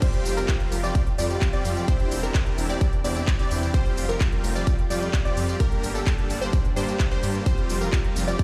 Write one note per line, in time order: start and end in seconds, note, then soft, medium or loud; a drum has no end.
0.00 5.56 C3 medium
0.00 1.86 F3 medium
0.00 7.42 G3 medium
0.00 0.34 G3 loud
0.00 0.34 C4 medium
0.00 0.34 F4 medium
0.00 1.86 F4 medium
0.00 8.44 G4 loud
0.00 0.34 G4 medium
0.00 0.34 C5 loud
0.00 kick loud
0.00 closed hi-hat medium
0.00 tambourine soft
0.00 crash medium
0.14 closed hi-hat soft
0.25 0.43 F1 loud
0.25 open hi-hat loud
0.25 tambourine medium
0.37 0.81 G3 medium
0.37 0.81 C4 medium
0.37 0.81 F4 medium
0.37 0.81 G4 medium
0.37 0.81 A#4 medium
0.37 tambourine soft
0.48 kick loud
0.48 clap loud
0.48 closed hi-hat medium
0.48 tambourine soft
0.60 closed hi-hat soft
0.72 0.90 F1 loud
0.72 open hi-hat loud
0.72 tambourine medium
0.83 1.02 G3 medium
0.83 1.02 C4 medium
0.83 1.02 F4 medium
0.83 1.02 G4 medium
0.83 1.02 D5 loud
0.83 tambourine soft
0.95 kick loud
0.95 closed hi-hat medium
0.95 tambourine soft
1.07 closed hi-hat soft
1.18 1.36 F2 loud
1.18 1.50 G3 medium
1.18 1.50 C4 medium
1.18 1.50 F4 medium
1.18 1.50 G4 medium
1.18 1.50 D5 medium
1.18 open hi-hat loud
1.18 tambourine medium
1.30 closed hi-hat soft
1.30 tambourine soft
1.42 kick loud
1.42 clap loud
1.42 closed hi-hat medium
1.42 tambourine soft
1.53 1.85 G3 medium
1.53 1.85 C4 medium
1.53 1.85 F4 medium
1.53 1.85 G4 medium
1.53 1.85 D5 loud
1.53 closed hi-hat soft
1.65 1.83 F2 loud
1.65 open hi-hat loud
1.65 tambourine medium
1.76 closed hi-hat soft
1.76 tambourine soft
1.88 3.72 E3 medium
1.88 2.20 C4 loud
1.88 2.20 D4 medium
1.88 3.72 D4 medium
1.88 2.20 E4 medium
1.88 2.20 G4 medium
1.88 2.20 C5 loud
1.88 kick loud
1.88 closed hi-hat medium
1.88 tambourine soft
2.00 closed hi-hat soft
2.11 2.29 E1 loud
2.11 open hi-hat loud
2.11 tambourine medium
2.23 2.67 C4 medium
2.23 2.67 D4 medium
2.23 2.67 E4 medium
2.23 2.67 G4 medium
2.23 2.67 A#4 medium
2.23 tambourine soft
2.35 kick loud
2.35 clap loud
2.35 closed hi-hat medium
2.35 tambourine soft
2.46 closed hi-hat soft
2.58 2.76 E1 loud
2.58 open hi-hat loud
2.58 tambourine medium
2.69 2.88 C4 medium
2.69 2.88 D4 medium
2.69 2.88 E4 medium
2.69 2.88 G4 medium
2.69 2.88 D5 loud
2.69 tambourine soft
2.81 kick loud
2.81 closed hi-hat medium
2.81 tambourine soft
2.93 closed hi-hat soft
3.04 3.22 E2 loud
3.04 3.36 C4 medium
3.04 3.36 D4 medium
3.04 3.36 E4 medium
3.04 3.36 G4 medium
3.04 3.36 D5 medium
3.04 open hi-hat loud
3.04 tambourine medium
3.17 tambourine soft
3.28 kick loud
3.28 clap loud
3.28 closed hi-hat medium
3.28 tambourine soft
3.39 3.71 C4 medium
3.39 3.71 D4 medium
3.39 3.71 E4 medium
3.39 3.71 G4 medium
3.39 3.71 D5 loud
3.39 closed hi-hat soft
3.51 3.69 E2 loud
3.51 open hi-hat loud
3.51 tambourine medium
3.63 tambourine soft
3.74 5.58 F3 medium
3.74 4.06 G3 loud
3.74 4.06 C4 medium
3.74 4.06 F4 medium
3.74 5.58 F4 medium
3.74 4.06 G4 medium
3.74 4.06 C5 loud
3.74 kick loud
3.74 closed hi-hat medium
3.74 tambourine soft
3.86 closed hi-hat soft
3.97 4.15 F1 loud
3.97 open hi-hat loud
3.97 tambourine medium
4.09 4.53 G3 medium
4.09 4.53 C4 medium
4.09 4.53 F4 medium
4.09 4.53 G4 medium
4.09 4.53 A#4 medium
4.09 tambourine soft
4.21 kick loud
4.21 clap loud
4.21 closed hi-hat medium
4.21 tambourine soft
4.32 closed hi-hat soft
4.44 4.62 F1 loud
4.44 open hi-hat loud
4.44 tambourine medium
4.55 4.74 G3 medium
4.55 4.74 C4 medium
4.55 4.74 F4 medium
4.55 4.74 G4 medium
4.55 4.74 D5 loud
4.55 tambourine soft
4.67 kick loud
4.67 closed hi-hat medium
4.67 tambourine soft
4.79 closed hi-hat soft
4.90 5.08 F2 loud
4.90 5.22 G3 medium
4.90 5.22 C4 medium
4.90 5.22 F4 medium
4.90 5.22 G4 medium
4.90 5.22 D5 medium
4.90 open hi-hat loud
4.90 tambourine medium
5.02 closed hi-hat soft
5.02 tambourine soft
5.14 kick loud
5.14 clap loud
5.14 closed hi-hat medium
5.14 tambourine soft
5.25 5.57 G3 medium
5.25 5.57 C4 medium
5.25 5.57 F4 medium
5.25 5.57 G4 medium
5.25 5.57 D5 loud
5.25 closed hi-hat soft
5.37 5.55 F2 loud
5.37 open hi-hat loud
5.37 tambourine medium
5.48 closed hi-hat soft
5.48 tambourine soft
5.60 7.44 A#2 medium
5.60 7.44 D3 medium
5.60 5.92 G3 medium
5.60 5.92 A#3 medium
5.60 7.44 D4 medium
5.60 5.92 D4 medium
5.60 5.92 G4 medium
5.60 5.92 A#4 loud
5.60 kick loud
5.60 closed hi-hat medium
5.60 tambourine soft
5.72 closed hi-hat soft
5.83 6.01 G1 loud
5.83 open hi-hat loud
5.83 tambourine medium
5.95 6.39 G3 medium
5.95 6.39 A#3 medium
5.95 6.39 D4 medium
5.95 6.39 G4 medium
5.95 6.39 A4 medium
5.95 closed hi-hat soft
5.95 tambourine soft
6.07 kick loud
6.07 clap loud
6.07 closed hi-hat medium
6.07 tambourine soft
6.18 closed hi-hat soft
6.30 6.48 G1 loud
6.30 open hi-hat loud
6.30 tambourine medium
6.41 6.60 G3 medium
6.41 6.60 A#3 medium
6.41 6.60 D4 medium
6.41 6.60 G4 medium
6.41 6.60 C5 loud
6.41 tambourine soft
6.53 kick loud
6.53 closed hi-hat medium
6.53 tambourine soft
6.65 closed hi-hat soft
6.76 6.94 G2 loud
6.76 7.08 G3 medium
6.76 7.08 A#3 medium
6.76 7.08 D4 medium
6.76 7.08 G4 medium
6.76 7.08 C5 medium
6.76 open hi-hat loud
6.76 tambourine medium
6.88 closed hi-hat soft
6.88 tambourine soft
7.00 kick loud
7.00 clap loud
7.00 closed hi-hat medium
7.00 tambourine soft
7.11 7.43 G3 medium
7.11 7.43 A#3 medium
7.11 7.43 D4 medium
7.11 7.43 G4 medium
7.11 7.43 C5 loud
7.11 closed hi-hat soft
7.23 7.41 G2 loud
7.23 open hi-hat loud
7.23 tambourine medium
7.35 closed hi-hat soft
7.35 tambourine soft
7.46 8.44 C3 medium
7.46 8.44 F3 medium
7.46 7.78 G3 loud
7.46 8.44 G3 medium
7.46 7.78 C4 medium
7.46 7.78 F4 medium
7.46 8.44 F4 medium
7.46 7.78 G4 medium
7.46 7.78 C5 loud
7.46 kick loud
7.46 closed hi-hat medium
7.46 tambourine soft
7.58 closed hi-hat soft
7.69 7.87 F1 loud
7.69 open hi-hat loud
7.69 tambourine medium
7.81 8.25 G3 medium
7.81 8.25 C4 medium
7.81 8.25 F4 medium
7.81 8.25 G4 medium
7.81 8.25 A#4 medium
7.81 closed hi-hat soft
7.81 tambourine soft
7.93 kick loud
7.93 clap loud
7.93 closed hi-hat medium
7.93 tambourine soft
8.04 closed hi-hat soft
8.16 8.34 F1 loud
8.16 open hi-hat loud
8.16 tambourine medium
8.27 8.44 G3 medium
8.27 8.44 C4 medium
8.27 8.44 F4 medium
8.27 8.44 G4 medium
8.27 8.44 D5 loud
8.27 closed hi-hat soft
8.27 tambourine soft
8.39 kick loud
8.39 closed hi-hat medium
8.39 tambourine soft